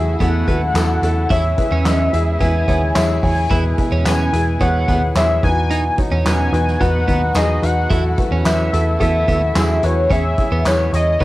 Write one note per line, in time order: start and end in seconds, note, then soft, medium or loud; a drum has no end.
0.00 0.15 E2 loud
0.00 3.47 C#3 medium
0.00 1.31 E3 medium
0.00 1.27 F#3 medium
0.00 1.28 A3 medium
0.00 0.21 E4 medium
0.00 5.39 E4 medium
0.00 0.21 F#4 medium
0.00 1.27 F#4 medium
0.00 0.15 G#4 medium
0.00 0.21 A4 loud
0.00 1.33 B4 medium
0.00 0.17 E5 medium
0.20 0.43 E2 loud
0.20 0.46 B3 medium
0.20 0.43 E4 medium
0.20 0.43 F#4 medium
0.20 0.43 A4 medium
0.20 1.27 F#5 loud
0.20 kick medium
0.20 closed hi-hat medium
0.48 0.70 D#2 medium
0.48 0.61 B3 medium
0.48 0.71 E4 medium
0.48 0.71 F#4 medium
0.48 0.71 A4 medium
0.48 kick medium
0.48 closed hi-hat medium
0.74 0.97 E2 loud
0.74 0.98 E4 medium
0.74 0.98 F#4 medium
0.74 0.98 A4 loud
0.74 snare medium
0.74 clap medium
0.74 closed hi-hat medium
0.74 tambourine medium
1.02 1.25 E2 medium
1.02 1.26 E4 medium
1.02 1.26 F#4 medium
1.02 1.26 A4 loud
1.02 closed hi-hat medium
1.29 1.53 E2 loud
1.29 3.48 E3 medium
1.29 2.10 E3 medium
1.29 5.39 G#3 medium
1.29 1.43 E4 loud
1.29 1.53 E4 loud
1.29 5.39 G#4 medium
1.29 1.54 G#4 medium
1.29 1.54 C#5 medium
1.29 2.42 E5 loud
1.29 kick loud
1.29 closed hi-hat medium
1.58 1.81 E4 medium
1.58 1.81 G#4 medium
1.58 1.81 B4 medium
1.58 kick medium
1.58 closed hi-hat medium
1.71 1.83 E2 loud
1.71 2.11 C#4 medium
1.85 2.08 E2 medium
1.85 2.08 E4 medium
1.85 2.08 G#4 medium
1.85 2.08 D#5 medium
1.85 snare loud
1.85 clap medium
1.85 closed hi-hat loud
1.85 tambourine medium
2.13 2.36 E2 medium
2.13 2.36 E4 medium
2.13 2.36 G#4 medium
2.13 2.36 E5 loud
2.13 closed hi-hat medium
2.40 2.63 E2 medium
2.40 2.67 B3 medium
2.40 2.63 E4 medium
2.40 2.63 G#4 medium
2.40 2.63 E5 loud
2.40 2.97 G#5 loud
2.40 kick medium
2.40 closed hi-hat medium
2.68 2.91 D#2 medium
2.68 2.81 B3 medium
2.68 2.91 E4 medium
2.68 2.91 G#4 medium
2.68 2.91 C#5 medium
2.68 kick medium
2.68 closed hi-hat medium
2.95 3.18 E2 medium
2.95 3.18 E4 loud
2.95 3.18 G#4 medium
2.95 3.18 C#5 loud
2.95 3.25 E5 loud
2.95 snare loud
2.95 clap medium
2.95 closed hi-hat medium
2.95 tambourine medium
3.23 3.46 E2 medium
3.23 3.46 E4 medium
3.23 3.46 G#4 medium
3.23 3.46 C#5 medium
3.23 3.78 G#5 loud
3.23 kick medium
3.23 open hi-hat medium
3.50 3.73 E2 loud
3.50 4.29 B2 medium
3.50 5.42 B2 medium
3.50 5.41 E3 medium
3.50 3.73 E4 loud
3.50 3.64 E4 loud
3.50 3.73 G#4 medium
3.50 3.73 B4 medium
3.50 kick loud
3.50 closed hi-hat medium
3.78 4.01 E4 medium
3.78 4.01 G#4 medium
3.78 4.01 B4 medium
3.78 kick medium
3.78 closed hi-hat medium
3.92 4.03 E2 loud
3.92 4.31 C#4 medium
4.05 4.28 E2 medium
4.05 4.29 E4 medium
4.05 4.29 G#4 medium
4.05 4.29 B4 medium
4.05 4.57 G#5 loud
4.05 snare medium
4.05 clap medium
4.05 closed hi-hat medium
4.05 tambourine medium
4.33 4.56 E2 medium
4.33 4.56 E4 medium
4.33 4.56 G#4 medium
4.33 4.56 B4 medium
4.33 closed hi-hat medium
4.60 4.83 E2 loud
4.60 4.87 B3 medium
4.60 4.84 E4 medium
4.60 4.83 G#4 medium
4.60 4.84 C#5 loud
4.60 5.13 F#5 loud
4.60 kick medium
4.60 closed hi-hat medium
4.88 5.11 D#2 medium
4.88 5.01 B3 medium
4.88 5.11 E4 medium
4.88 5.11 G#4 medium
4.88 5.11 B4 medium
4.88 kick medium
4.88 closed hi-hat medium
5.15 5.38 E2 medium
5.15 5.38 E4 medium
5.15 5.39 G#4 medium
5.15 5.38 C#5 loud
5.15 5.42 E5 medium
5.15 snare medium
5.15 clap medium
5.15 closed hi-hat medium
5.15 tambourine medium
5.43 5.88 E2 loud
5.43 7.88 B2 medium
5.43 6.22 E3 medium
5.43 10.07 F#3 medium
5.43 7.88 D#4 medium
5.43 5.89 D#4 medium
5.43 10.06 F#4 medium
5.43 5.89 F#4 medium
5.43 5.89 B4 medium
5.43 5.95 G#5 loud
5.43 kick medium
5.43 closed hi-hat medium
5.71 5.84 D#4 loud
5.71 closed hi-hat medium
5.98 6.21 D#4 medium
5.98 6.21 F#4 medium
5.98 6.21 C#5 medium
5.98 kick medium
5.98 closed hi-hat medium
6.11 6.23 E2 loud
6.11 6.51 C#4 medium
6.25 6.48 E2 medium
6.25 6.49 D#4 medium
6.25 6.49 F#4 medium
6.25 6.49 B4 medium
6.25 6.83 G#5 loud
6.25 snare loud
6.25 clap medium
6.25 closed hi-hat loud
6.25 tambourine medium
6.53 6.75 E2 loud
6.53 6.76 D#4 medium
6.53 6.76 F#4 medium
6.53 6.76 B4 medium
6.53 closed hi-hat medium
6.67 snare soft
6.80 7.03 E2 loud
6.80 7.07 B3 medium
6.80 7.03 D#4 medium
6.80 7.03 F#4 medium
6.80 7.03 B4 loud
6.80 7.36 F#5 loud
6.80 kick medium
6.80 closed hi-hat medium
7.08 7.31 D#2 medium
7.08 7.21 B3 medium
7.08 7.31 D#4 medium
7.08 7.31 F#4 medium
7.08 7.31 B4 medium
7.08 kick medium
7.08 closed hi-hat medium
7.35 7.58 E2 medium
7.35 7.58 D#4 loud
7.35 7.58 F#4 medium
7.35 7.58 G#4 loud
7.35 7.65 D#5 loud
7.35 snare medium
7.35 clap medium
7.35 closed hi-hat medium
7.35 tambourine medium
7.62 7.85 E2 medium
7.62 7.86 D#4 medium
7.62 7.86 F#4 medium
7.62 7.86 B4 medium
7.62 8.18 F#5 loud
7.62 closed hi-hat medium
7.90 8.13 E2 loud
7.90 11.24 C#3 medium
7.90 8.69 E3 medium
7.90 10.08 A3 medium
7.90 8.13 E4 medium
7.90 8.04 E4 loud
7.90 11.17 E4 medium
7.90 8.13 F#4 medium
7.90 8.13 A4 medium
7.90 kick loud
7.90 closed hi-hat loud
8.18 8.41 E4 medium
8.18 8.41 F#4 medium
8.18 8.41 B4 medium
8.18 kick medium
8.18 closed hi-hat medium
8.31 8.43 E2 medium
8.31 8.71 C#4 medium
8.45 8.68 E2 medium
8.45 8.68 E4 medium
8.45 8.68 F#4 medium
8.45 8.68 B4 medium
8.45 8.97 E5 loud
8.45 snare loud
8.45 clap medium
8.45 closed hi-hat medium
8.45 tambourine medium
8.73 8.96 E2 medium
8.73 8.96 E4 medium
8.73 8.96 F#4 medium
8.73 8.96 A4 medium
8.73 closed hi-hat medium
8.99 9.23 E2 loud
8.99 9.27 B3 medium
8.99 9.23 E4 medium
8.99 9.23 F#4 medium
8.99 9.23 A4 loud
8.99 9.87 E5 loud
8.99 kick medium
8.99 closed hi-hat medium
9.28 9.51 D#2 medium
9.28 9.41 B3 medium
9.28 9.51 E4 medium
9.28 9.51 F#4 medium
9.28 9.51 A4 medium
9.28 kick medium
9.28 closed hi-hat medium
9.55 9.78 E2 medium
9.55 9.78 E4 loud
9.55 9.78 F#4 medium
9.55 9.78 G#4 loud
9.55 snare loud
9.55 clap medium
9.55 closed hi-hat medium
9.55 tambourine medium
9.83 10.06 E2 loud
9.83 10.06 E4 medium
9.83 10.06 F#4 medium
9.83 10.06 B4 medium
9.83 10.11 C#5 medium
9.83 closed hi-hat medium
10.10 10.33 E2 loud
10.10 11.19 E3 medium
10.10 10.89 E3 medium
10.10 11.19 G#3 medium
10.10 10.24 C#4 loud
10.10 10.33 E4 medium
10.10 11.19 G#4 medium
10.10 10.33 G#4 medium
10.10 10.33 C#5 medium
10.10 10.62 E5 loud
10.10 kick loud
10.10 closed hi-hat medium
10.38 10.61 E4 medium
10.38 10.61 G#4 medium
10.38 10.61 C#5 medium
10.38 kick medium
10.38 closed hi-hat medium
10.52 10.63 E2 loud
10.52 10.91 B3 medium
10.65 10.88 E2 medium
10.65 10.88 E4 medium
10.65 10.89 G#4 medium
10.65 10.89 C#5 medium
10.65 10.92 C#5 loud
10.65 snare medium
10.65 clap medium
10.65 closed hi-hat loud
10.65 tambourine medium
10.93 11.15 E2 loud
10.93 11.16 E4 medium
10.93 11.16 G#4 medium
10.93 11.16 C#5 medium
10.93 11.24 D#5 medium
10.93 closed hi-hat medium
11.20 11.24 B1 loud
11.20 11.24 F#3 medium
11.20 11.24 B3 medium
11.20 11.24 D#4 medium
11.20 11.24 F#4 medium
11.20 11.24 B4 medium
11.20 11.24 C#5 loud
11.20 kick loud
11.20 snare medium